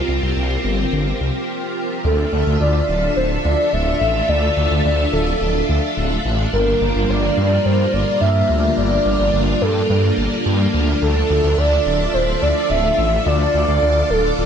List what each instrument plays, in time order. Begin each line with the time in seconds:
Already playing: string machine C4 F4 G4 A#4, soft synth lead F4
0.08 detuned saw bass C2
0.22 detuned saw bass C2
0.36 detuned saw bass C2
0.64 detuned saw bass G1
0.92 detuned saw bass G1
1.20 detuned saw bass C2
2.04 detuned saw bass D2, string machine D4 F4 A4 E5, soft synth lead A4
2.32 detuned saw bass D2
2.46 detuned saw bass D2
2.60 detuned saw bass D2, soft synth lead D5
2.88 detuned saw bass D1
3.16 detuned saw bass D1, soft synth lead C5
3.44 detuned saw bass D2, soft synth lead D5
3.72 detuned saw bass D1, soft synth lead E5
4.00 detuned saw bass A1
4.28 detuned saw bass D2, soft synth lead D5
4.57 detuned saw bass D2
4.71 detuned saw bass D2
4.85 detuned saw bass D2
5.13 detuned saw bass D1, soft synth lead A4
5.41 detuned saw bass D1
5.69 detuned saw bass D2
5.97 detuned saw bass D1
6.25 detuned saw bass A1
6.53 detuned saw bass G1, string machine G3 A#3 F4, soft synth lead A#4
6.81 detuned saw bass G1
6.95 detuned saw bass G1
7.09 detuned saw bass G1, soft synth lead D5
7.37 detuned saw bass G2
7.65 detuned saw bass G2, soft synth lead C5
7.93 detuned saw bass G1, soft synth lead D5
8.21 detuned saw bass G2, soft synth lead E5
8.49 detuned saw bass D2
8.77 detuned saw bass G1, soft synth lead D5
9.05 detuned saw bass G1
9.19 detuned saw bass G1
9.33 detuned saw bass G1
9.61 detuned saw bass G2, soft synth lead A4
9.89 detuned saw bass G2
10.17 detuned saw bass G1
10.45 detuned saw bass G2
10.73 detuned saw bass D2
11.01 detuned saw bass D2, string machine F4 A4 E5, soft synth lead A4
11.29 detuned saw bass D2
11.43 detuned saw bass D2
11.57 detuned saw bass D2, soft synth lead D5
11.85 detuned saw bass D1
12.13 detuned saw bass D1, soft synth lead C5
12.41 detuned saw bass D2, soft synth lead D5
12.70 detuned saw bass D1, soft synth lead E5
12.98 detuned saw bass A1
13.26 detuned saw bass D2, string machine D5, soft synth lead D5
13.54 detuned saw bass D2
13.68 detuned saw bass D2
13.82 detuned saw bass D2
14.10 detuned saw bass D1, soft synth lead A4
14.38 detuned saw bass D1